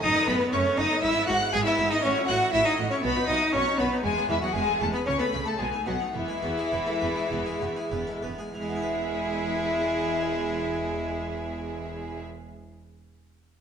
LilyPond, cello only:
\new Staff \with { instrumentName = "Cello" } { \time 4/4 \key e \major \tempo 4 = 107 dis'8 b8 cis'8 dis'8 e'8 fis'8 gis'16 e'8 dis'16 | cis'8 fis'8 e'16 dis'8 cis'16 b8 dis'8 cis'8 b8 | gis8 e16 fis16 gis8 a16 b16 cis'16 b8 a16 gis8 fis8 | e2.~ e8 r8 |
e'1~ | e'1 | }